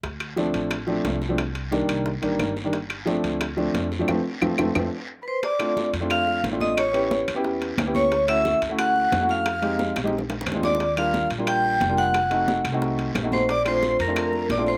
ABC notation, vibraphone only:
X:1
M:4/4
L:1/16
Q:1/4=178
K:Fmix
V:1 name="Vibraphone"
z16 | z16 | z16 | z12 z3/2 _c/2 =c2 |
d6 z2 f4 z2 e2 | ^c6 z8 c2- | ^c2 =e4 z2 ^f6 =f2- | f6 z8 d2- |
d2 f4 z2 g6 _g2- | _g6 z8 c2 | d2 c4 B2 B4 d2 c2 |]